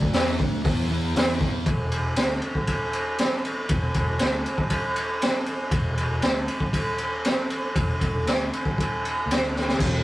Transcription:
Already playing: picked electric bass D2
0.02 kick
0.13 picked electric bass E2, distorted electric guitar E3 B3 E4, snare, open hi-hat
0.40 picked electric bass D2, distorted electric guitar D3 A3, kick
0.64 picked electric bass E2, distorted electric guitar E3 B3 E4, kick, open hi-hat
0.89 picked electric bass E2, distorted electric guitar E3 B3 E4
1.16 picked electric bass E2, distorted electric guitar E3 B3 E4, snare, open hi-hat
1.41 kick
1.66 picked electric bass E1, kick, ride
1.92 ride
2.16 picked electric bass D2, snare, ride
2.42 ride
2.55 kick
2.67 kick, ride
2.93 ride
3.18 snare, ride
3.45 ride
3.69 picked electric bass E1, kick, ride
3.94 kick, ride
4.19 picked electric bass D2, snare, ride
4.46 ride
4.58 kick
4.70 kick, ride
4.96 ride
5.22 snare, ride
5.46 ride
5.71 picked electric bass E1, kick, ride
5.97 ride
6.22 picked electric bass D2, snare, ride
6.48 ride
6.60 kick
6.73 kick, ride
6.98 ride
7.25 snare, ride
7.50 ride
7.75 picked electric bass E1, kick, ride
8.01 kick, ride
8.25 picked electric bass D2, snare, ride
8.53 ride
8.65 kick
8.78 kick, ride
9.05 ride
9.26 picked electric bass D2
9.31 snare, ride
9.56 snare
9.68 snare
9.79 picked electric bass E1, distorted electric guitar E2 B2 E3, kick, crash, ride

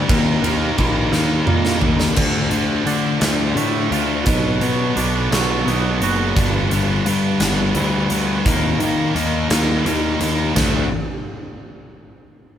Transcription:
0.07 picked electric bass D#2, distorted electric guitar D#3 G3 A#3 D#4, kick, ride
0.42 picked electric bass D#2, distorted electric guitar D#3 G3 A#3 D#4, ride
0.77 picked electric bass A#1, distorted electric guitar D#3 G3 A#3 D#4, kick, ride
1.12 picked electric bass D#2, distorted electric guitar D#3 G3 A#3 D#4, snare
1.45 picked electric bass A#2, distorted electric guitar D#3 G3 A#3 D#4, mid tom
1.65 snare
1.80 picked electric bass D#2, distorted electric guitar D#3 G3 A#3 D#4, floor tom
2.00 snare
2.15 picked electric bass D2, distorted electric guitar D3 F3 A3 D4, kick, crash
2.49 picked electric bass D2, distorted electric guitar D3 F3 A3 D4, closed hi-hat
2.84 distorted electric guitar D3 F3 A3 D4, picked electric bass D3, closed hi-hat
3.20 picked electric bass D2, distorted electric guitar D3 F3 A3 D4, snare, closed hi-hat
3.55 picked electric bass A2, distorted electric guitar D3 F3 A3 D4, closed hi-hat
3.89 picked electric bass D2, distorted electric guitar D3 F3 A3 D4, clean electric guitar F4, closed hi-hat
4.24 picked electric bass B1, distorted electric guitar B2 F#3 B3 D4, kick, closed hi-hat
4.60 distorted electric guitar B2 F#3 B3 D4, picked electric bass B2, closed hi-hat
4.96 picked electric bass B1, distorted electric guitar B2 F#3 B3 D4, closed hi-hat
5.30 picked electric bass B1, distorted electric guitar B2 F#3 B3 D4, snare, closed hi-hat
5.64 picked electric bass B1, distorted electric guitar B2 F#3 B3 D4, closed hi-hat
6.00 picked electric bass F#1, distorted electric guitar B2 F#3 B3 D4, clean electric guitar F#4, closed hi-hat
6.34 picked electric bass G1, distorted electric guitar G2 D3 G3 B3 D4, kick, closed hi-hat
6.69 picked electric bass G1, distorted electric guitar G2 D3 G3 B3 D4, closed hi-hat
7.05 distorted electric guitar G2 D3 G3 B3 D4, picked electric bass G2, closed hi-hat
7.40 picked electric bass G1, distorted electric guitar G2 D3 G3 B3 D4, snare, closed hi-hat
7.75 picked electric bass D2, distorted electric guitar G2 D3 G3 B3 D4, closed hi-hat
8.10 picked electric bass D2, distorted electric guitar G2 D3 G3 B3 D4, closed hi-hat
8.44 picked electric bass D#2, distorted electric guitar D#3 G3 A#3 D#4, kick, closed hi-hat
8.79 picked electric bass D#3, distorted electric guitar D#3 G3 A#3 D#4, closed hi-hat
9.14 picked electric bass D#2, distorted electric guitar D#3 G3 A#3 D#4, closed hi-hat
9.50 picked electric bass D#2, distorted electric guitar D#3 G3 A#3 D#4, snare, closed hi-hat
9.85 picked electric bass D#2, distorted electric guitar D#3 G3 A#3 D#4, closed hi-hat
10.18 picked electric bass D#2, distorted electric guitar D#3 G3 A#3 D#4, closed hi-hat
10.54 picked electric bass D2, distorted electric guitar D3 F3 A3 D4, snare, floor tom, ride bell

